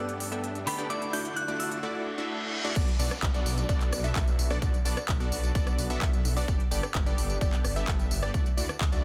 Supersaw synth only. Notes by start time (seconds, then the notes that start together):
Already playing: B3 D4 G4 A4 D5
0.32 B3 D4 G4 A4 E5
0.78 B3 D4 G4 A4 D5
0.90 A3 D4 E4 F#4 D5
1.13 A3 D4 E4 F#4 D5
1.48 A3 D4 E4 F#4 D5
1.83 A3 D4 E4 F#4 D5
2.18 A3 D4 E4 F#4 E5
2.64 A3 D4 E4 F#4 D5
2.76 B3 D4 F#4 A4
2.99 B3 D4 F#4 A4 D5
3.34 B3 D4 F#4 A4 D5
3.69 B3 D4 F#4 A4 D5
4.04 B3 D4 F#4 A4 E5
4.50 B3 D4 F#4 A4 D5
4.62 B3 D4 F#4 A4 D5
4.85 B3 D4 F#4 A4 D5
5.20 B3 D4 F#4 A4 D5
5.55 B3 D4 F#4 A4 D5
5.90 B3 D4 F#4 A4 E5
6.37 B3 D4 F#4 A4 D5
6.48 B3 D4 G4 A4 D5
6.71 B3 D4 G4 A4 D5
7.06 B3 D4 G4 A4 D5
7.41 B3 D4 G4 A4 D5
7.76 B3 D4 G4 A4 E5
8.22 B3 D4 G4 A4 D5
8.34 E4 F#4 D5
8.57 A3 D4 E4 F#4 D5
8.92 A3 D4 E4 F#4 D5